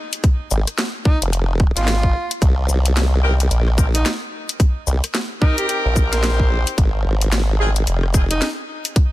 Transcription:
0.13 closed hi-hat medium
0.24 kick loud
0.24 closed hi-hat medium
0.51 0.65 G#1 medium
0.51 shaker medium
0.67 cross-stick soft
0.67 closed hi-hat medium
0.78 snare loud
0.78 closed hi-hat medium
1.05 1.19 D#4 medium
1.05 kick loud
1.22 1.74 F1 loud
1.22 closed hi-hat medium
1.33 closed hi-hat medium
1.60 kick loud
1.77 2.13 G#1 medium
1.77 2.31 F4 loud
1.77 snare soft
1.77 closed hi-hat medium
1.79 snare soft
1.82 snare soft
1.85 snare soft
1.88 snare loud
1.88 closed hi-hat medium
2.03 kick medium
2.31 closed hi-hat medium
2.42 2.67 C2 loud
2.42 kick loud
2.42 closed hi-hat medium
2.69 3.49 C2 medium
2.69 shaker medium
2.86 closed hi-hat medium
2.97 snare loud
2.97 closed hi-hat medium
3.23 3.32 C4 loud
3.23 3.32 D#4 medium
3.23 3.32 G4 medium
3.23 3.32 A#4 loud
3.40 closed hi-hat medium
3.51 4.04 A#1 loud
3.51 closed hi-hat soft
3.68 cross-stick soft
3.78 3.86 C4 medium
3.78 3.86 D#4 medium
3.78 3.86 G4 medium
3.78 3.86 A#4 medium
3.78 kick loud
3.78 shaker medium
3.94 4.11 D#4 medium
3.94 closed hi-hat medium
4.06 snare loud
4.06 closed hi-hat medium
4.49 closed hi-hat medium
4.60 kick loud
4.60 closed hi-hat medium
4.87 5.01 C2 medium
4.87 shaker medium
5.04 cross-stick soft
5.04 closed hi-hat medium
5.15 snare loud
5.15 closed hi-hat medium
5.41 6.09 C4 medium
5.41 6.09 D#4 medium
5.41 5.55 D#4 medium
5.41 6.09 G4 medium
5.41 6.09 A#4 loud
5.41 kick loud
5.58 5.65 G4 medium
5.58 closed hi-hat medium
5.68 5.79 G4 medium
5.68 closed hi-hat medium
5.86 6.65 A#1 loud
5.96 kick loud
5.96 shaker medium
6.12 6.77 C4 medium
6.12 6.77 D#4 medium
6.12 6.77 G4 medium
6.12 6.51 A#4 loud
6.12 6.77 C5 loud
6.12 snare soft
6.12 closed hi-hat medium
6.24 snare loud
6.24 closed hi-hat medium
6.40 kick medium
6.67 closed hi-hat medium
6.78 7.04 G#1 loud
6.78 kick loud
6.78 closed hi-hat medium
7.05 7.85 G#1 medium
7.21 closed hi-hat medium
7.32 snare loud
7.32 closed hi-hat medium
7.59 7.68 C4 loud
7.59 7.68 D#4 medium
7.59 7.68 F4 medium
7.59 7.68 G#4 loud
7.76 closed hi-hat medium
7.87 8.40 F1 loud
7.87 closed hi-hat medium
8.03 cross-stick soft
8.14 8.23 C4 medium
8.14 8.23 D#4 medium
8.14 8.23 F4 medium
8.14 8.23 G#4 medium
8.14 kick loud
8.14 shaker medium
8.31 8.48 D#4 loud
8.31 closed hi-hat medium
8.42 snare loud
8.42 closed hi-hat medium
8.85 closed hi-hat medium
8.96 kick loud
8.96 closed hi-hat medium

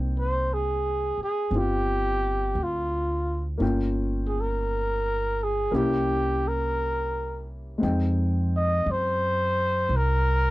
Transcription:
0.00 1.15 C2 medium
0.00 3.56 A#3 soft
0.00 1.50 C4 soft
0.00 3.62 D#4 soft
0.00 3.63 G#4 soft
0.00 3.60 G5 soft
0.19 0.55 C5 medium
0.54 1.21 G#4 medium
1.18 muted upright bass stroke soft
1.23 1.59 G#4 medium
1.51 2.52 G1 medium
1.51 3.61 C4 soft
1.56 3.59 F4 soft
1.56 2.65 G4 medium
2.55 3.57 D2 medium
2.63 3.48 F4 medium
3.58 5.66 G1 medium
3.58 5.69 A#3 soft
3.58 5.70 C#4 soft
3.58 5.70 F4 soft
3.62 5.71 G5 soft
4.28 4.42 G#4 medium
4.40 5.45 A#4 medium
5.43 5.77 G#4 medium
5.71 7.76 C2 medium
5.71 7.80 A#3 medium
5.71 7.80 C#4 soft
5.71 7.82 E4 soft
5.75 6.49 G4 medium
5.75 7.82 G4 medium
6.48 7.49 A#4 medium
7.78 10.51 G#3 soft
7.78 10.51 C4 soft
7.82 8.82 F2 medium
7.82 10.51 D#4 soft
7.82 10.51 G5 soft
8.56 8.92 D#5 medium
8.86 9.86 F#2 medium
8.91 9.98 C5 medium
9.89 10.51 C2 medium
9.96 10.51 A#4 medium

